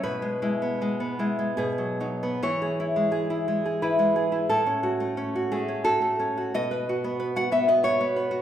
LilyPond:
\new Staff \with { instrumentName = "Nylon-string guitar" } { \time 3/4 \key e \major \tempo 4 = 88 << { b'2 gis'4 | cis''2 b'4 | a'4. gis'8 a'4 | dis''4~ dis''16 fis''16 e''16 dis''16 cis''4 | } \\ { b,16 gis16 <gis e'>16 b16 gis16 b16 <gis e'>16 gis16 b,16 fis16 <fis dis'>16 b16 | e16 gis'16 e'16 gis16 gis'16 e'16 gis16 gis'16 e'16 gis16 gis'16 e'16 | a,16 cis'16 fis'16 a16 cis'16 fis'16 a16 cis'16 fis'16 a16 cis'16 fis'16 | b,16 b'16 fis'16 b16 b'16 fis'16 b16 b'16 fis'16 b16 b'16 fis'16 | } >> }